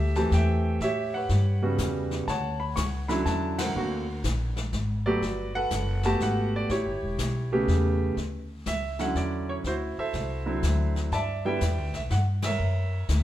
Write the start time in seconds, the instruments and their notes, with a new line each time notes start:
Already playing: upright bass D2, grand piano G4 A4 E5
0.15 grand piano E3 A3 C4 G4 A5, snare
0.31 upright bass E2, grand piano G5, kick, snare
0.36 grand piano E5
0.80 upright bass A2, grand piano G4 C#5 E5, brush sweep, kick, snare
1.14 grand piano B4 C#5 F#5
1.29 upright bass G2, kick, snare
1.62 grand piano C#3 G3 B3 F#4
1.78 upright bass E2, kick, snare, hi-hat pedal
2.11 snare
2.27 upright bass D2, grand piano C#5 F#5 A5, brush sweep, kick, snare
2.60 grand piano B5
2.76 upright bass C#2, grand piano C#6, kick, snare, hi-hat pedal
3.08 grand piano D3 F#3 C#4 E4 B5, snare
3.25 upright bass E2, grand piano A5, kick, snare
3.58 grand piano A#4 C5 F#5, snare, ride
3.75 upright bass D2, grand piano D3 A#3 C4 F#4, brush sweep
4.24 upright bass A#1, kick, snare, hi-hat pedal
4.56 snare
4.73 upright bass G#1, kick, snare
5.06 grand piano F#3 A3 B3 F#4 G4 B4 D5
5.22 upright bass G1, brush sweep, kick, snare
5.55 grand piano A4 B4 F#5
5.71 upright bass F#1, kick, snare, hi-hat pedal
6.03 grand piano A3 B3 F#4 G4 A5, snare
6.20 upright bass G#1, grand piano F#5, kick, snare
6.56 grand piano D5
6.69 upright bass A1, grand piano E4 G4 C#5, brush sweep, kick, snare
6.86 upright bass G1
7.02 upright bass E1
7.18 upright bass B1, kick, snare, hi-hat pedal
7.52 grand piano C#3 A3 B3 G4
7.68 upright bass E2, kick, snare
8.17 upright bass D2, brush sweep, kick, snare
8.66 upright bass C#2, grand piano E5, kick, snare, hi-hat pedal
8.99 grand piano D3 F#3 C#4 E4 F#5, snare
9.15 upright bass E2, grand piano D5, kick, snare
9.49 grand piano C#5
9.64 upright bass D2, grand piano E4 F#4 C5, brush sweep, kick, snare
9.98 grand piano A4 C5 E5, muted upright bass stroke
10.13 upright bass C2, kick, snare
10.46 grand piano D3 F#3 C4 E4
10.63 upright bass D2, kick, snare, hi-hat pedal
10.96 snare
11.11 upright bass G2, grand piano D5 E5 A5, brush sweep, kick, snare
11.45 grand piano D3 G3 B3 E4 B4 E5 G5
11.61 upright bass E2, kick, snare, hi-hat pedal
11.78 upright bass D2
11.94 upright bass B1, grand piano E5, snare
12.10 upright bass G2, grand piano F#5, kick, snare
12.42 grand piano A#4 E5, snare, ride
12.47 grand piano C#5
12.59 upright bass F#2, brush sweep
13.09 upright bass D2, kick, snare, hi-hat pedal